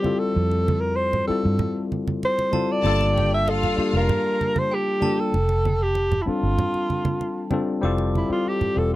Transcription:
Already playing: G3 C4 F4 G4 C5
0.02 G3 C4 E4 F4 A4, high conga
0.19 A4
0.36 F2
0.51 muted conga
0.68 high conga
0.80 A#4
0.96 C5
1.13 low conga
1.27 G3 C4 E4 F4 A4, muted fingered electric bass stroke
1.31 A4
1.45 G2
1.59 low conga
1.92 high conga
2.08 high conga
2.23 C5, muted conga
2.39 muted conga
2.52 G3 C4 E4 F4 A4 A5, high conga
2.72 D5
2.83 G1 G3 A#3 D4 F4 A4 A5, muted conga
3.01 muted conga
3.15 G4 G5, high conga
3.34 E5
3.46 F4 A4 F5, muted conga
3.63 low conga
3.76 G3 A#3 D4 F4 G4, muted fingered electric bass stroke
3.93 F1 A#4
4.09 muted conga, low conga
4.41 high conga
4.56 C5, high conga
4.71 G4 G5
5.00 G3 A#3 D4 F4 A4 A5, high conga
5.20 A4
5.34 F1, muted conga
5.49 muted conga
5.65 high conga
5.82 G4
5.95 muted conga
6.12 muted conga, low conga
6.22 G3 E4
6.27 C4 D4 F4 A4, muted fingered electric bass stroke
6.43 G1
6.58 muted conga, low conga
6.74 muted conga
6.90 high conga
7.05 high conga
7.21 muted conga
7.50 G3 C4 D4 F4 A4, high conga
7.81 F1 G3 C4 E4 F4 A4 D6
7.98 muted conga
8.15 E4, high conga
8.28 G3 C4 E4 F4 A4, muted fingered electric bass stroke
8.32 F4
8.48 G4
8.61 muted fingered electric bass stroke, muted conga, low conga
8.75 E1 G3 C4 F4 G4 A4

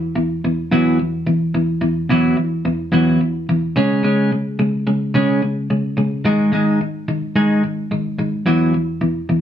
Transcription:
Already playing: E2 E3
0.16 E2 E3
0.44 E2 E3
0.72 E2 E3 F#3
0.99 E2 E3
1.27 E2 E3
1.54 E2 E3
1.81 E2 E3
2.09 E2 E3 F#3
2.37 E2 E3
2.65 E2 E3
2.92 E2 E3 F#3
3.21 E2 E3
3.49 E2 E3
3.76 C#3 G#3 C#4
4.03 C#3 G#3 C#4
4.32 C#3 G#3
4.59 C#3 G#3
4.87 C#3 G#3
5.14 C#3 G#3 C#4
5.42 C#3 G#3
5.70 C#3 G#3
5.97 C#3 G#3
6.25 G#2 D#3 G#3
6.52 G#2 D#3 G#3
6.81 G#2 D#3
7.08 G#2 D#3
7.36 G#2 D#3 G#3
7.63 G#2 D#3
7.91 G#2 D#3
8.19 G#2 D#3
8.46 E2 E3 F#3
8.74 E2 E3
9.01 E2 E3
9.29 E2 E3

